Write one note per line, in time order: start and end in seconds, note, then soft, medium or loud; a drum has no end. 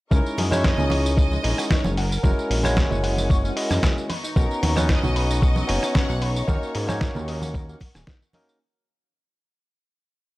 0.11 0.21 C#2 loud
0.11 0.48 G#3 medium
0.11 0.48 C#4 medium
0.11 0.19 C#4 medium
0.11 0.48 D#4 medium
0.11 0.49 E4 medium
0.11 0.55 A#4 loud
0.11 4.06 A#4 medium
0.11 0.49 A#4 loud
0.11 1.96 D#5 medium
0.11 1.96 C#6 medium
0.11 kick loud
0.11 tambourine medium
0.26 tambourine soft
0.38 0.72 F#2 medium
0.38 0.45 G#4 medium
0.38 open hi-hat loud
0.38 muted conga medium
0.51 1.40 G#3 medium
0.51 1.41 C#4 medium
0.51 1.41 D#4 medium
0.51 1.41 E4 medium
0.51 0.58 F#4 medium
0.51 1.41 C#5 loud
0.51 cross-stick medium
0.51 tambourine medium
0.51 high conga medium
0.58 0.65 E5 medium
0.64 1.15 D#5 loud
0.64 kick loud
0.64 snare loud
0.64 tambourine medium
0.78 1.39 C#2 loud
0.78 0.82 G#4 medium
0.78 tambourine soft
0.78 low conga medium
0.90 0.95 C#5 loud
0.90 open hi-hat loud
0.90 muted conga medium
1.06 tambourine medium
1.16 1.25 G#4 medium
1.16 1.66 D#5 loud
1.16 kick loud
1.16 tambourine medium
1.32 1.38 G#3 medium
1.32 tambourine soft
1.32 muted conga soft
1.43 1.54 A#1 medium
1.43 1.95 G#3 medium
1.43 1.95 C#4 medium
1.43 1.96 D#4 medium
1.43 1.96 E4 medium
1.43 1.96 D#5 medium
1.43 open hi-hat loud
1.58 1.64 F#4 medium
1.58 cross-stick medium
1.58 tambourine medium
1.69 1.81 D#4 medium
1.69 1.96 C#5 loud
1.69 kick loud
1.69 snare loud
1.69 tambourine medium
1.84 2.18 F#1 loud
1.84 tambourine soft
1.84 muted conga medium
1.96 2.72 A#4 medium
1.96 2.02 F#5 loud
1.96 4.08 F#5 medium
1.96 4.08 G#5 medium
1.96 open hi-hat medium
2.12 2.21 A#4 medium
2.12 tambourine medium
2.23 2.34 F#1 loud
2.23 2.61 G#3 medium
2.23 2.61 C#4 medium
2.23 2.61 E4 medium
2.23 2.61 F#4 medium
2.23 2.31 F#4 medium
2.23 2.61 A#4 loud
2.23 kick loud
2.23 tambourine medium
2.23 muted conga medium
2.39 tambourine soft
2.50 2.84 A#1 medium
2.50 2.57 C#5 medium
2.50 open hi-hat loud
2.63 3.53 G#3 loud
2.63 3.53 C#4 medium
2.63 3.53 E4 medium
2.63 3.54 F#4 medium
2.63 2.71 A#4 medium
2.63 3.54 C#5 loud
2.63 cross-stick medium
2.63 tambourine medium
2.63 high conga medium
2.77 kick loud
2.77 snare loud
2.77 tambourine medium
2.77 muted conga medium
2.91 3.51 F#1 loud
2.91 2.95 C#5 medium
2.91 tambourine soft
2.91 low conga medium
3.03 3.07 F#5 loud
3.03 open hi-hat loud
3.18 tambourine medium
3.18 muted conga soft
3.30 3.37 C#5 medium
3.30 kick loud
3.30 tambourine medium
3.44 3.50 C#4 medium
3.44 tambourine soft
3.56 4.08 G#3 medium
3.56 4.08 C#4 medium
3.56 4.08 E4 medium
3.56 4.08 F#4 medium
3.56 4.08 D#5 medium
3.56 open hi-hat loud
3.70 3.79 F#2 medium
3.70 3.77 A#4 medium
3.70 cross-stick medium
3.70 snare soft
3.70 tambourine medium
3.70 muted conga medium
3.82 3.93 G#4 medium
3.82 kick loud
3.82 snare loud
3.82 tambourine medium
3.98 tambourine soft
4.09 6.46 B3 medium
4.09 4.14 B4 loud
4.09 8.57 D#5 medium
4.09 6.46 A#5 medium
4.09 8.57 C#6 medium
4.09 open hi-hat medium
4.09 muted conga medium
4.23 4.33 D#4 medium
4.23 tambourine medium
4.36 4.46 B1 loud
4.36 4.73 B3 medium
4.36 4.43 B3 medium
4.36 4.73 C#4 medium
4.36 4.73 D#4 medium
4.36 4.74 F#4 medium
4.36 4.86 A#4 loud
4.36 4.74 A#5 loud
4.36 kick loud
4.36 tambourine medium
4.51 tambourine soft
4.62 4.97 D#2 medium
4.62 4.70 F#4 medium
4.62 open hi-hat loud
4.62 muted conga medium
4.76 5.65 B3 loud
4.76 5.66 C#4 medium
4.76 4.83 D#4 medium
4.76 5.66 D#4 medium
4.76 5.66 F#4 medium
4.76 5.66 B4 loud
4.76 cross-stick medium
4.76 tambourine medium
4.76 high conga medium
4.89 5.42 D#5 loud
4.89 kick loud
4.89 snare loud
4.89 tambourine medium
5.03 5.63 B1 loud
5.03 5.07 F#4 medium
5.03 tambourine soft
5.03 muted conga medium
5.03 low conga medium
5.16 5.20 B4 loud
5.16 open hi-hat loud
5.31 tambourine medium
5.42 5.49 F#4 medium
5.42 5.92 D#5 loud
5.42 kick loud
5.42 tambourine medium
5.56 5.63 F#3 medium
5.56 tambourine soft
5.56 muted conga medium
5.67 5.79 F#1 medium
5.67 6.45 B3 medium
5.67 6.45 C#4 medium
5.67 6.45 D#4 medium
5.67 6.45 F#4 medium
5.67 6.46 C#5 medium
5.67 open hi-hat loud
5.83 5.89 D#4 medium
5.83 cross-stick medium
5.83 tambourine medium
5.95 6.06 C#4 medium
5.95 6.20 F#5 loud
5.95 kick loud
5.95 snare loud
5.95 tambourine medium
5.95 muted conga medium
6.09 6.43 B1 loud
6.09 tambourine soft
6.22 6.26 B4 loud
6.22 7.02 C#5 loud
6.22 open hi-hat loud
6.36 6.45 D#4 medium
6.36 tambourine medium
6.47 6.58 D#2 loud
6.47 6.85 A#3 medium
6.47 6.85 C#4 medium
6.47 6.85 D#4 medium
6.47 6.55 D#4 medium
6.47 6.85 F#4 medium
6.47 6.86 A#4 loud
6.47 8.59 A#4 medium
6.47 8.59 F#5 medium
6.47 kick loud
6.47 tambourine medium
6.47 muted conga medium
6.63 tambourine soft
6.75 7.09 G#2 medium
6.75 6.82 A#4 medium
6.75 open hi-hat loud
6.87 7.77 A#3 loud
6.87 7.78 C#4 medium
6.87 7.78 D#4 medium
6.87 7.78 F#4 medium
6.87 6.95 G#4 medium
6.87 7.78 C#5 loud
6.87 cross-stick medium
6.87 tambourine medium
6.87 muted conga medium
6.87 high conga medium
7.01 kick loud
7.01 snare loud
7.01 tambourine medium
7.15 7.75 D#2 loud
7.15 7.20 A#4 medium
7.15 tambourine soft
7.15 low conga medium
7.28 7.33 D#5 loud
7.28 open hi-hat loud
7.42 tambourine medium
7.42 muted conga medium
7.54 7.62 A#4 medium
7.54 kick loud
7.54 tambourine medium
7.69 7.75 A#3 medium
7.69 tambourine soft
7.80 kick medium
7.80 open hi-hat loud
7.80 muted conga medium
7.95 8.04 D#1 loud
7.95 8.02 G#4 medium
7.95 cross-stick medium
7.95 snare soft
7.95 tambourine medium
8.07 8.18 D#4 medium
8.07 kick loud
8.07 snare loud
8.07 tambourine medium
8.22 tambourine soft
8.33 8.58 A#3 loud
8.33 8.58 C#4 medium
8.33 8.58 D#4 loud
8.33 8.58 F#4 medium
8.33 8.58 A#4 loud
8.33 8.39 D#5 loud
8.33 open hi-hat loud
8.33 muted conga medium
8.48 8.58 G#4 medium
8.48 tambourine medium